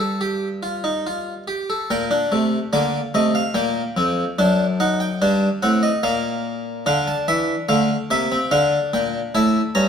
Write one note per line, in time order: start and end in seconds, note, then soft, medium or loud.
0.00 1.43 G2 medium
0.00 0.20 A4 medium
0.00 1.43 G5 medium
0.21 0.47 G4 medium
0.63 0.83 F4 medium
0.84 1.04 D#4 medium
1.07 1.32 F4 medium
1.48 1.68 G4 medium
1.70 1.89 A4 medium
1.90 2.16 A#2 medium
1.90 2.10 A#4 medium
1.90 2.71 G5 medium
2.11 2.31 D4 medium
2.32 2.58 C3 medium
2.32 2.57 A3 medium
2.73 2.99 D3 medium
2.73 2.99 A#3 medium
2.73 2.99 D5 medium
3.14 3.40 C3 medium
3.14 3.40 A3 medium
3.14 3.35 D#5 medium
3.35 3.55 F5 medium
3.54 3.81 A#2 medium
3.54 3.81 A#3 medium
3.54 4.35 G5 medium
3.97 4.22 F2 medium
3.97 4.23 C4 medium
4.39 5.19 F#2 medium
4.39 4.64 D4 loud
4.39 4.64 A5 medium
4.80 5.06 D#4 medium
4.80 5.00 F#5 medium
5.00 5.20 G5 medium
5.22 5.47 G2 medium
5.22 5.47 D4 medium
5.22 5.47 A5 medium
5.62 5.88 A2 medium
5.62 5.89 C4 medium
5.62 5.83 F#5 medium
5.83 6.03 D#5 medium
6.03 6.84 A#2 medium
6.03 6.84 A#3 medium
6.03 6.84 F5 medium
6.86 7.12 D3 medium
6.86 7.67 D4 medium
6.86 7.07 F5 medium
7.08 7.28 A5 medium
7.28 7.54 E3 medium
7.28 7.54 E5 medium
7.69 7.95 D3 medium
7.69 7.95 A3 medium
7.69 7.94 F5 medium
8.11 8.36 C3 medium
8.11 8.31 A#3 medium
8.11 8.36 E5 medium
8.32 8.51 C4 medium
8.51 8.77 D3 medium
8.51 9.32 D4 medium
8.51 8.77 F5 medium
8.94 9.19 A#2 medium
8.94 9.19 G5 medium
9.35 9.60 A2 medium
9.35 9.60 E4 medium
9.35 9.60 A5 loud
9.75 9.89 G2 medium
9.75 9.89 C#4 medium
9.75 9.89 A#5 medium